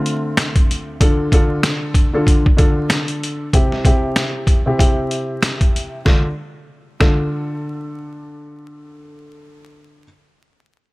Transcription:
Already playing: D2 D3 A3 C4 F4 E5
0.06 closed hi-hat
0.37 snare, closed hi-hat
0.56 kick, closed hi-hat
0.71 closed hi-hat
1.00 D3 D4 F4 A4, kick, closed hi-hat
1.32 D3 D4 F4 A4, kick, closed hi-hat
1.63 snare, closed hi-hat
1.94 kick, closed hi-hat
2.14 D3 D4 F4 A4
2.27 kick, closed hi-hat
2.46 kick
2.57 D3 D4 F4 A4, kick, closed hi-hat
2.90 snare, closed hi-hat
3.08 closed hi-hat
3.23 closed hi-hat
3.53 C3 C4 E4 G4, kick, closed hi-hat
3.72 snare
3.85 C3 C4 E4 G4, kick, closed hi-hat
4.16 snare, closed hi-hat
4.47 kick, closed hi-hat
4.66 C3 C4 E4 G4
4.78 C3 C4 E4 G4, kick, closed hi-hat
5.11 closed hi-hat
5.42 snare, closed hi-hat
5.61 kick, closed hi-hat
5.76 closed hi-hat
6.05 D3 D4 F4 A4, kick, snare
7.00 D3 D4 F4 A4, kick, snare

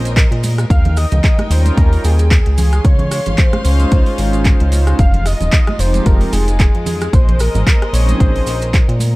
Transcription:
Already playing: A#1 G#3 A#3 A#4 C5 D#5
0.05 closed hi-hat, maracas
0.17 A#4, kick, clap, closed hi-hat, maracas
0.31 A#2, closed hi-hat
0.43 open hi-hat, high conga, maracas
0.58 cross-stick, closed hi-hat, maracas
0.70 D#2 D#4 F5 G5, kick, closed hi-hat, maracas
0.85 closed hi-hat, low conga
0.97 D#5, cross-stick, open hi-hat, maracas
1.11 C#2, closed hi-hat, low conga, maracas
1.24 kick, clap, closed hi-hat, maracas
1.39 cross-stick, closed hi-hat, high conga
1.50 D#2 G3 C#4 D#4 F4 A#4 C5, open hi-hat, maracas
1.66 closed hi-hat, high conga, maracas
1.77 D#2 A#4, kick, closed hi-hat, maracas
1.92 G3 C#4 D#4 F4 C5, open hi-hat
2.04 D#2 G#4, open hi-hat, maracas
2.19 closed hi-hat, maracas
2.31 kick, clap, closed hi-hat, maracas
2.46 C#2, closed hi-hat
2.58 C#4 G#4 F5 C6, open hi-hat, low conga, maracas
2.73 cross-stick, closed hi-hat, maracas
2.85 C#2 C#5, kick, closed hi-hat, maracas
2.99 closed hi-hat, low conga
3.11 cross-stick, open hi-hat, maracas
3.26 G#1, closed hi-hat, low conga, maracas
3.38 C5, kick, clap, closed hi-hat, maracas
3.53 cross-stick, closed hi-hat, high conga
3.65 C#2 G#3 C#4 D#4 F4 C5, open hi-hat, maracas
3.80 closed hi-hat, high conga, maracas
3.91 C#2, kick, closed hi-hat, maracas
4.06 G#3 C#4 D#4 F4 C#5, open hi-hat
4.18 G#1 G#3 C#4 D#4 F4 C5, open hi-hat, maracas
4.33 closed hi-hat, maracas
4.45 kick, clap, closed hi-hat, maracas
4.60 C#2, closed hi-hat
4.72 open hi-hat, high conga, maracas
4.87 G#3 C#4 D#4 F4 C5, cross-stick, closed hi-hat, maracas
4.99 F1 G#3 D#4 F4 F5, kick, closed hi-hat, maracas
5.14 closed hi-hat, low conga
5.26 D#5, cross-stick, open hi-hat, maracas
5.41 D#1, closed hi-hat, low conga, maracas
5.52 kick, clap, closed hi-hat, maracas
5.67 cross-stick, closed hi-hat, high conga
5.79 F1 F3 G#3 C4 D#4 G4 C5, open hi-hat, maracas
5.94 closed hi-hat, high conga, maracas
6.06 F1 A#4, kick, closed hi-hat, maracas
6.21 F3 G#3 C4 D#4 G#4, open hi-hat
6.33 F1 G#4, open hi-hat, maracas
6.48 closed hi-hat, maracas
6.60 kick, clap, closed hi-hat, maracas
6.75 F2, closed hi-hat
6.86 G#4, open hi-hat, low conga, maracas
7.01 cross-stick, closed hi-hat, maracas
7.13 A#1 A#3 A#4 C5 D#5, kick, closed hi-hat, maracas
7.29 closed hi-hat, low conga
7.39 A#4, cross-stick, open hi-hat, maracas
7.55 G#1, closed hi-hat, low conga, maracas
7.67 kick, clap, closed hi-hat, maracas
7.82 cross-stick, closed hi-hat
7.93 A#1 F3 C4 C#4 D#4 G#4 C#5, open hi-hat, maracas
8.08 closed hi-hat, high conga, maracas
8.20 A#1 C5, kick, closed hi-hat, maracas
8.35 F3 C4 C#4 D#4 A#4, open hi-hat
8.46 A#1, open hi-hat, maracas
8.61 closed hi-hat, maracas
8.74 kick, clap, closed hi-hat, maracas
8.88 A#2, closed hi-hat
8.99 open hi-hat, high conga, maracas

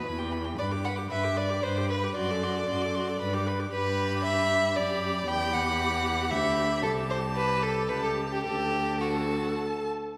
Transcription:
Already playing: B4
0.05 E2 E4 B5
0.18 G4 G5
0.32 E4 B5
0.45 G4 G5
0.58 G2 B4 D5 B5
0.71 G4 D6
0.84 B4 F#5 B5
0.96 G4 D6
1.10 G2 B4 E5 B5
1.24 G4 D6
1.37 B4 D5 B5
1.50 G4 D6
1.63 G2 B4 C5 B5
1.76 G4 D6
1.89 B4 B5
2.03 G4 D6
2.16 F#2 F#4 D5 C6
2.30 A4 D6
2.43 F#4 C6
2.56 A4 D6
2.69 F#2 F#4 C6
2.82 A4 D6
2.95 F#4 C6
3.08 A4 D6
3.20 G2 B4 B5
3.34 G4 D6
3.46 B4 B5
3.59 G4 D6
3.72 G2 G4 B4 B5
4.24 E5
4.76 F#2 G4 D5 B5
5.28 E2 G4 G5 B5
5.53 F#5
6.31 D2 G4 E5 B5
6.82 C2 G4 A4 A5
7.10 C5
7.36 B4
7.62 A4
7.89 C#2 G4 B4 A5
8.03 A4
8.32 G4
8.43 D2 G4 A4 A5
9.00 F#4 A4 A5

